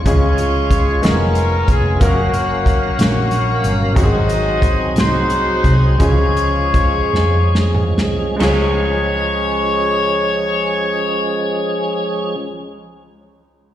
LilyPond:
<<
  \new Staff \with { instrumentName = "Horn section" } { \time 6/8 \key des \major \tempo 4. = 56 << { des''4. bes'4 aes'8 | ges'4. ges'4 r8 | ees''4. c''4 c''8 | des''2~ des''8 r8 |
des''2.~ | des''2. | } \\ { <f' aes'>4. des'4. | <bes des'>4. <bes des'>4. | <ges' c''>4. <ees' ges'>4. | <f' aes'>2~ <f' aes'>8 r8 |
r2. | r2. | } >> }
  \new Staff \with { instrumentName = "Grand piano" } { \time 6/8 \key des \major <aes des' f' aes'>4. <aes ces' des' f' aes'>4. | <bes des' ges' bes' f''>2. | <aes c' ees' ges' g' aes'>2. | <aes des' f' aes'>2. |
<aes des' f' aes'>2.~ | <aes des' f' aes'>2. | }
  \new Staff \with { instrumentName = "Grand piano" } { \clef bass \time 6/8 \key des \major des4. r4. | r2. | aes,4. r4. | des4. r4. |
des,2.~ | des,2. | }
  \new Staff \with { instrumentName = "Tonewheel organ" } { \time 6/8 \key des \major <aes des' fes' f' des''>4. <aes ces' des' ees' f'>4. | <ges des' aes' bes' f''>2. | <ges c' ees' aes'>2. | <ees f aes des' aes'>2. |
<f aes des' aes'>2.~ | <f aes des' aes'>2. | }
  \new Staff \with { instrumentName = "Fingered electric bass" } { \clef bass \time 6/8 \key des \major des,4. f,,4 f,,8 | ges,,4. bes,,4 g,,8 | aes,,4. c,4 c,8 | des,4. f,4 c,8 |
des,2.~ | des,2. | }
  \new DrumStaff \with { instrumentName = "Drums" } \drummode { \time 6/8 <hh bd>8 hh8 <hh bd>8 <hh sn>8 hh8 <hh bd>8 | <hh bd>8 hh8 <hh bd>8 <hh sn>8 hh8 hh8 | <hh bd>8 hh8 <hh bd>8 <hh sn>8 hh8 <hh bd>8 | <hh bd>8 hh8 <hh bd>8 sn8 sn16 toml16 sn8 |
<cymc sn>4. r4. | r4. r4. | }
>>